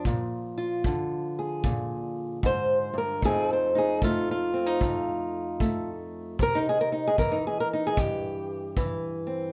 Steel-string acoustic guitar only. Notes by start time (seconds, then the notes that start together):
Already playing: F3
0.06 A#2
0.58 F4
0.85 D3
1.39 G#4
1.65 A#2
2.43 G#2 C5
2.93 G2
2.98 A#4
3.24 F2 A3 C4 D#4 G#4
3.53 C5
3.75 D#4 G#4
4.03 A3 F4
4.31 F4
4.54 C4
4.66 D#4
4.82 F2
5.60 A3
6.39 C3 A#4
6.55 D#4
6.69 G#4
6.81 A#4
6.92 D#4
7.07 G#4
7.19 E3 A#4
7.32 D#4
7.47 G#4
7.60 A#4
7.73 D#4
7.87 G#4
7.97 G2 G4
8.77 E3
9.27 C4